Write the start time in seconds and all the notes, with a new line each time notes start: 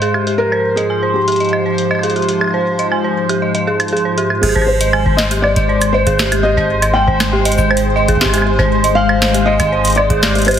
Already playing: G#2 C5
0.02 G#4, closed hi-hat
0.14 G4, high woodblock
0.27 G4, closed hi-hat
0.38 F3 G4 A#4
0.52 C5, high woodblock
0.76 G#4 D#5, closed hi-hat
0.90 G#5
1.03 C5
1.14 G4
1.28 G4, closed hi-hat
1.32 closed hi-hat
1.36 closed hi-hat
1.40 D#5, closed hi-hat
1.45 closed hi-hat
1.49 closed hi-hat
1.53 D#5, high woodblock
1.66 C5
1.78 closed hi-hat
1.91 D#5, high woodblock
1.95 high woodblock
1.99 high woodblock
2.03 G#4, closed hi-hat
2.10 closed hi-hat
2.16 G4, closed hi-hat
2.22 closed hi-hat
2.29 G4, closed hi-hat
2.41 G4, high woodblock
2.44 high woodblock
2.48 high woodblock
2.54 C5
2.79 D#5, closed hi-hat
2.92 G#5, high woodblock
3.04 C5
3.29 G4, closed hi-hat, high woodblock
3.42 D#5
3.55 D#5, closed hi-hat
3.67 G#4
3.80 closed hi-hat, high woodblock
3.88 closed hi-hat
3.92 G#4
3.97 closed hi-hat
4.05 C5
4.18 G4, closed hi-hat
4.30 G4, high woodblock
4.41 G#1 G#3 G4 G#4 C5, crash, high woodblock
4.49 high woodblock
4.55 C5, kick, high woodblock
4.62 high woodblock
4.67 C5
4.81 D#5, closed hi-hat
4.93 G#5, high woodblock
5.06 C5, kick
5.17 D#5, snare
5.31 G4, closed hi-hat
5.42 D5 D#5, high woodblock
5.56 D#5, kick, closed hi-hat
5.69 C5
5.82 closed hi-hat, cabasa, high woodblock
5.93 C5 D#5
6.07 G#4, kick, closed hi-hat
6.19 G4, snare, cabasa
6.32 G4, closed hi-hat, high woodblock
6.43 G4 D#5
6.57 C5, kick
6.82 D#5, closed hi-hat, high woodblock
6.94 G5 G#5
7.08 C5, kick
7.20 snare, high woodblock
7.33 G4
7.45 D#5, closed hi-hat
7.52 closed hi-hat
7.58 D#5, kick, cabasa
7.71 C5, high woodblock
7.77 closed hi-hat
7.96 D#5
8.08 G#4, kick, closed hi-hat
8.17 kick
8.21 G4, snare, high woodblock
8.25 kick, high woodblock
8.29 high woodblock
8.34 G4, closed hi-hat, high woodblock
8.38 high woodblock
8.42 high woodblock
8.46 G4
8.59 C5, kick, high woodblock
8.84 D#5, closed hi-hat
8.95 F5 G#5
9.09 C5, high woodblock
9.22 snare
9.34 G4, closed hi-hat
9.46 D#5
9.60 D#5, kick, closed hi-hat, high woodblock
9.72 C5
9.85 closed hi-hat, cabasa
9.87 closed hi-hat
9.90 closed hi-hat
9.92 closed hi-hat
9.95 D5 D#5, closed hi-hat, high woodblock
10.10 G#4, kick, closed hi-hat
10.23 G4, snare, cabasa
10.35 G4, closed hi-hat
10.38 closed hi-hat
10.42 closed hi-hat
10.45 G4 C5, closed hi-hat
10.48 closed hi-hat, high woodblock
10.51 closed hi-hat
10.54 closed hi-hat